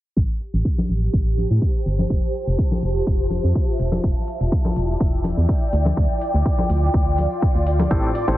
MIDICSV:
0, 0, Header, 1, 6, 480
1, 0, Start_track
1, 0, Key_signature, 0, "minor"
1, 0, Tempo, 483871
1, 165, Time_signature, 4, 2, 24, 8
1, 8307, End_track
2, 0, Start_track
2, 0, Title_t, "String machine"
2, 0, Program_c, 0, 50
2, 7844, Note_on_c, 0, 74, 80
2, 7845, Note_on_c, 0, 86, 79
2, 8307, Note_off_c, 0, 74, 0
2, 8307, Note_off_c, 0, 86, 0
2, 8307, End_track
3, 0, Start_track
3, 0, Title_t, "Ambient pad"
3, 0, Program_c, 1, 92
3, 164, Note_on_c, 1, 67, 85
3, 545, Note_on_c, 1, 81, 71
3, 1005, Note_on_c, 1, 72, 85
3, 2085, Note_on_c, 1, 65, 73
3, 2759, Note_off_c, 1, 67, 0
3, 2760, Note_off_c, 1, 72, 0
3, 2843, Note_on_c, 1, 76, 70
3, 3765, Note_off_c, 1, 65, 0
3, 3767, Note_on_c, 1, 64, 71
3, 3932, Note_on_c, 1, 74, 74
3, 4250, Note_on_c, 1, 79, 77
3, 4536, Note_off_c, 1, 76, 0
3, 4536, Note_off_c, 1, 81, 0
3, 5686, Note_off_c, 1, 64, 0
3, 5686, Note_on_c, 1, 65, 77
3, 6555, Note_off_c, 1, 79, 0
3, 6657, Note_on_c, 1, 84, 78
3, 7843, Note_on_c, 1, 67, 70
3, 7845, Note_off_c, 1, 65, 0
3, 8307, Note_off_c, 1, 67, 0
3, 8307, Note_off_c, 1, 74, 0
3, 8307, Note_off_c, 1, 84, 0
3, 8307, End_track
4, 0, Start_track
4, 0, Title_t, "Grand piano"
4, 0, Program_c, 2, 0
4, 7844, Note_on_c, 2, 45, 72
4, 7844, Note_on_c, 2, 60, 66
4, 7844, Note_on_c, 2, 64, 66
4, 7844, Note_on_c, 2, 67, 66
4, 7844, Note_on_c, 2, 69, 64
4, 7845, Note_on_c, 2, 72, 78
4, 7996, Note_off_c, 2, 45, 0
4, 7996, Note_off_c, 2, 60, 0
4, 7996, Note_off_c, 2, 64, 0
4, 7996, Note_off_c, 2, 67, 0
4, 7996, Note_off_c, 2, 69, 0
4, 7997, Note_off_c, 2, 72, 0
4, 8211, Note_on_c, 2, 45, 74
4, 8211, Note_on_c, 2, 60, 67
4, 8211, Note_on_c, 2, 64, 70
4, 8211, Note_on_c, 2, 67, 67
4, 8211, Note_on_c, 2, 69, 71
4, 8211, Note_on_c, 2, 72, 84
4, 8307, Note_off_c, 2, 45, 0
4, 8307, Note_off_c, 2, 60, 0
4, 8307, Note_off_c, 2, 64, 0
4, 8307, Note_off_c, 2, 67, 0
4, 8307, Note_off_c, 2, 69, 0
4, 8307, Note_off_c, 2, 72, 0
4, 8307, End_track
5, 0, Start_track
5, 0, Title_t, "FM bass"
5, 0, Program_c, 3, 39
5, 165, Note_on_c, 3, 33, 96
5, 265, Note_off_c, 3, 33, 0
5, 533, Note_on_c, 3, 33, 85
5, 621, Note_off_c, 3, 33, 0
5, 886, Note_on_c, 3, 33, 88
5, 1078, Note_off_c, 3, 33, 0
5, 1125, Note_on_c, 3, 33, 95
5, 1450, Note_off_c, 3, 33, 0
5, 1493, Note_on_c, 3, 45, 86
5, 1582, Note_off_c, 3, 45, 0
5, 1845, Note_on_c, 3, 31, 94
5, 2038, Note_off_c, 3, 31, 0
5, 2084, Note_on_c, 3, 29, 96
5, 2185, Note_off_c, 3, 29, 0
5, 2453, Note_on_c, 3, 29, 85
5, 2542, Note_off_c, 3, 29, 0
5, 2805, Note_on_c, 3, 29, 91
5, 2998, Note_off_c, 3, 29, 0
5, 3045, Note_on_c, 3, 29, 95
5, 3369, Note_off_c, 3, 29, 0
5, 3412, Note_on_c, 3, 41, 88
5, 3501, Note_off_c, 3, 41, 0
5, 3764, Note_on_c, 3, 28, 97
5, 3957, Note_off_c, 3, 28, 0
5, 4005, Note_on_c, 3, 28, 93
5, 4105, Note_off_c, 3, 28, 0
5, 4372, Note_on_c, 3, 28, 85
5, 4461, Note_off_c, 3, 28, 0
5, 4725, Note_on_c, 3, 28, 87
5, 4918, Note_off_c, 3, 28, 0
5, 4964, Note_on_c, 3, 28, 94
5, 5289, Note_off_c, 3, 28, 0
5, 5331, Note_on_c, 3, 40, 86
5, 5421, Note_off_c, 3, 40, 0
5, 5683, Note_on_c, 3, 38, 96
5, 5877, Note_off_c, 3, 38, 0
5, 5924, Note_on_c, 3, 38, 94
5, 6025, Note_off_c, 3, 38, 0
5, 6291, Note_on_c, 3, 38, 85
5, 6381, Note_off_c, 3, 38, 0
5, 6644, Note_on_c, 3, 38, 89
5, 6837, Note_off_c, 3, 38, 0
5, 6884, Note_on_c, 3, 38, 97
5, 7209, Note_off_c, 3, 38, 0
5, 7491, Note_on_c, 3, 38, 83
5, 7806, Note_off_c, 3, 38, 0
5, 7844, Note_on_c, 3, 33, 94
5, 7945, Note_off_c, 3, 33, 0
5, 8212, Note_on_c, 3, 33, 86
5, 8301, Note_off_c, 3, 33, 0
5, 8307, End_track
6, 0, Start_track
6, 0, Title_t, "Drums"
6, 162, Note_on_c, 9, 54, 47
6, 164, Note_on_c, 9, 36, 111
6, 261, Note_off_c, 9, 54, 0
6, 264, Note_off_c, 9, 36, 0
6, 405, Note_on_c, 9, 46, 98
6, 504, Note_off_c, 9, 46, 0
6, 526, Note_on_c, 9, 54, 38
6, 533, Note_on_c, 9, 46, 58
6, 625, Note_off_c, 9, 54, 0
6, 632, Note_off_c, 9, 46, 0
6, 645, Note_on_c, 9, 36, 99
6, 744, Note_off_c, 9, 36, 0
6, 776, Note_on_c, 9, 63, 89
6, 875, Note_off_c, 9, 63, 0
6, 885, Note_on_c, 9, 46, 100
6, 888, Note_on_c, 9, 54, 90
6, 984, Note_off_c, 9, 46, 0
6, 987, Note_off_c, 9, 54, 0
6, 1019, Note_on_c, 9, 54, 38
6, 1119, Note_off_c, 9, 54, 0
6, 1124, Note_on_c, 9, 54, 52
6, 1125, Note_on_c, 9, 36, 112
6, 1223, Note_off_c, 9, 54, 0
6, 1224, Note_off_c, 9, 36, 0
6, 1361, Note_on_c, 9, 54, 84
6, 1365, Note_on_c, 9, 46, 98
6, 1367, Note_on_c, 9, 63, 58
6, 1460, Note_off_c, 9, 54, 0
6, 1465, Note_off_c, 9, 46, 0
6, 1466, Note_off_c, 9, 63, 0
6, 1495, Note_on_c, 9, 54, 33
6, 1594, Note_off_c, 9, 54, 0
6, 1596, Note_on_c, 9, 54, 46
6, 1605, Note_on_c, 9, 36, 97
6, 1695, Note_off_c, 9, 54, 0
6, 1704, Note_off_c, 9, 36, 0
6, 1733, Note_on_c, 9, 54, 34
6, 1833, Note_off_c, 9, 54, 0
6, 1846, Note_on_c, 9, 46, 102
6, 1848, Note_on_c, 9, 54, 93
6, 1945, Note_off_c, 9, 46, 0
6, 1948, Note_off_c, 9, 54, 0
6, 1971, Note_on_c, 9, 54, 35
6, 1972, Note_on_c, 9, 63, 83
6, 2070, Note_off_c, 9, 54, 0
6, 2071, Note_off_c, 9, 63, 0
6, 2079, Note_on_c, 9, 54, 51
6, 2084, Note_on_c, 9, 36, 113
6, 2178, Note_off_c, 9, 54, 0
6, 2184, Note_off_c, 9, 36, 0
6, 2325, Note_on_c, 9, 46, 101
6, 2331, Note_on_c, 9, 54, 83
6, 2424, Note_off_c, 9, 46, 0
6, 2430, Note_off_c, 9, 54, 0
6, 2452, Note_on_c, 9, 54, 37
6, 2551, Note_off_c, 9, 54, 0
6, 2561, Note_on_c, 9, 54, 47
6, 2564, Note_on_c, 9, 36, 104
6, 2660, Note_off_c, 9, 54, 0
6, 2663, Note_off_c, 9, 36, 0
6, 2692, Note_on_c, 9, 63, 90
6, 2791, Note_off_c, 9, 63, 0
6, 2805, Note_on_c, 9, 46, 104
6, 2805, Note_on_c, 9, 54, 99
6, 2904, Note_off_c, 9, 46, 0
6, 2904, Note_off_c, 9, 54, 0
6, 2935, Note_on_c, 9, 54, 41
6, 3034, Note_off_c, 9, 54, 0
6, 3044, Note_on_c, 9, 36, 116
6, 3143, Note_off_c, 9, 36, 0
6, 3278, Note_on_c, 9, 63, 65
6, 3280, Note_on_c, 9, 54, 85
6, 3284, Note_on_c, 9, 46, 106
6, 3377, Note_off_c, 9, 63, 0
6, 3379, Note_off_c, 9, 54, 0
6, 3383, Note_off_c, 9, 46, 0
6, 3404, Note_on_c, 9, 54, 38
6, 3503, Note_off_c, 9, 54, 0
6, 3517, Note_on_c, 9, 54, 53
6, 3524, Note_on_c, 9, 36, 99
6, 3616, Note_off_c, 9, 54, 0
6, 3624, Note_off_c, 9, 36, 0
6, 3650, Note_on_c, 9, 54, 32
6, 3750, Note_off_c, 9, 54, 0
6, 3760, Note_on_c, 9, 54, 80
6, 3765, Note_on_c, 9, 46, 105
6, 3859, Note_off_c, 9, 54, 0
6, 3864, Note_off_c, 9, 46, 0
6, 3885, Note_on_c, 9, 54, 41
6, 3887, Note_on_c, 9, 63, 93
6, 3985, Note_off_c, 9, 54, 0
6, 3986, Note_off_c, 9, 63, 0
6, 4005, Note_on_c, 9, 36, 114
6, 4104, Note_off_c, 9, 36, 0
6, 4238, Note_on_c, 9, 54, 90
6, 4245, Note_on_c, 9, 46, 106
6, 4337, Note_off_c, 9, 54, 0
6, 4344, Note_off_c, 9, 46, 0
6, 4371, Note_on_c, 9, 54, 36
6, 4373, Note_on_c, 9, 46, 62
6, 4470, Note_off_c, 9, 54, 0
6, 4472, Note_off_c, 9, 46, 0
6, 4477, Note_on_c, 9, 54, 48
6, 4484, Note_on_c, 9, 36, 107
6, 4577, Note_off_c, 9, 54, 0
6, 4584, Note_off_c, 9, 36, 0
6, 4611, Note_on_c, 9, 63, 85
6, 4710, Note_off_c, 9, 63, 0
6, 4725, Note_on_c, 9, 46, 105
6, 4727, Note_on_c, 9, 54, 85
6, 4824, Note_off_c, 9, 46, 0
6, 4826, Note_off_c, 9, 54, 0
6, 4856, Note_on_c, 9, 54, 37
6, 4955, Note_off_c, 9, 54, 0
6, 4964, Note_on_c, 9, 54, 55
6, 4965, Note_on_c, 9, 36, 117
6, 5063, Note_off_c, 9, 54, 0
6, 5064, Note_off_c, 9, 36, 0
6, 5198, Note_on_c, 9, 63, 65
6, 5203, Note_on_c, 9, 54, 89
6, 5204, Note_on_c, 9, 46, 109
6, 5297, Note_off_c, 9, 63, 0
6, 5302, Note_off_c, 9, 54, 0
6, 5304, Note_off_c, 9, 46, 0
6, 5335, Note_on_c, 9, 54, 36
6, 5434, Note_off_c, 9, 54, 0
6, 5444, Note_on_c, 9, 36, 99
6, 5448, Note_on_c, 9, 54, 51
6, 5543, Note_off_c, 9, 36, 0
6, 5547, Note_off_c, 9, 54, 0
6, 5571, Note_on_c, 9, 54, 37
6, 5670, Note_off_c, 9, 54, 0
6, 5685, Note_on_c, 9, 46, 109
6, 5686, Note_on_c, 9, 54, 95
6, 5784, Note_off_c, 9, 46, 0
6, 5785, Note_off_c, 9, 54, 0
6, 5804, Note_on_c, 9, 54, 38
6, 5807, Note_on_c, 9, 63, 89
6, 5904, Note_off_c, 9, 54, 0
6, 5906, Note_off_c, 9, 63, 0
6, 5923, Note_on_c, 9, 54, 50
6, 5924, Note_on_c, 9, 36, 118
6, 6022, Note_off_c, 9, 54, 0
6, 6023, Note_off_c, 9, 36, 0
6, 6162, Note_on_c, 9, 54, 85
6, 6165, Note_on_c, 9, 46, 103
6, 6261, Note_off_c, 9, 54, 0
6, 6264, Note_off_c, 9, 46, 0
6, 6299, Note_on_c, 9, 54, 37
6, 6398, Note_off_c, 9, 54, 0
6, 6404, Note_on_c, 9, 36, 108
6, 6407, Note_on_c, 9, 54, 49
6, 6503, Note_off_c, 9, 36, 0
6, 6506, Note_off_c, 9, 54, 0
6, 6532, Note_on_c, 9, 63, 91
6, 6631, Note_off_c, 9, 63, 0
6, 6645, Note_on_c, 9, 46, 105
6, 6646, Note_on_c, 9, 54, 86
6, 6744, Note_off_c, 9, 46, 0
6, 6746, Note_off_c, 9, 54, 0
6, 6767, Note_on_c, 9, 54, 37
6, 6867, Note_off_c, 9, 54, 0
6, 6884, Note_on_c, 9, 36, 117
6, 6887, Note_on_c, 9, 54, 53
6, 6983, Note_off_c, 9, 36, 0
6, 6987, Note_off_c, 9, 54, 0
6, 7124, Note_on_c, 9, 54, 87
6, 7125, Note_on_c, 9, 46, 105
6, 7126, Note_on_c, 9, 63, 55
6, 7223, Note_off_c, 9, 54, 0
6, 7224, Note_off_c, 9, 46, 0
6, 7225, Note_off_c, 9, 63, 0
6, 7248, Note_on_c, 9, 54, 37
6, 7347, Note_off_c, 9, 54, 0
6, 7362, Note_on_c, 9, 54, 54
6, 7364, Note_on_c, 9, 36, 101
6, 7461, Note_off_c, 9, 54, 0
6, 7463, Note_off_c, 9, 36, 0
6, 7487, Note_on_c, 9, 54, 33
6, 7586, Note_off_c, 9, 54, 0
6, 7601, Note_on_c, 9, 54, 89
6, 7605, Note_on_c, 9, 46, 104
6, 7701, Note_off_c, 9, 54, 0
6, 7704, Note_off_c, 9, 46, 0
6, 7732, Note_on_c, 9, 46, 59
6, 7732, Note_on_c, 9, 63, 96
6, 7733, Note_on_c, 9, 54, 39
6, 7831, Note_off_c, 9, 63, 0
6, 7832, Note_off_c, 9, 46, 0
6, 7832, Note_off_c, 9, 54, 0
6, 7838, Note_on_c, 9, 54, 53
6, 7844, Note_on_c, 9, 36, 115
6, 7845, Note_on_c, 9, 42, 49
6, 7937, Note_off_c, 9, 54, 0
6, 7943, Note_off_c, 9, 36, 0
6, 7944, Note_off_c, 9, 42, 0
6, 7973, Note_on_c, 9, 42, 25
6, 8073, Note_off_c, 9, 42, 0
6, 8081, Note_on_c, 9, 54, 89
6, 8085, Note_on_c, 9, 46, 100
6, 8180, Note_off_c, 9, 54, 0
6, 8185, Note_off_c, 9, 46, 0
6, 8212, Note_on_c, 9, 54, 39
6, 8213, Note_on_c, 9, 46, 59
6, 8307, Note_off_c, 9, 46, 0
6, 8307, Note_off_c, 9, 54, 0
6, 8307, End_track
0, 0, End_of_file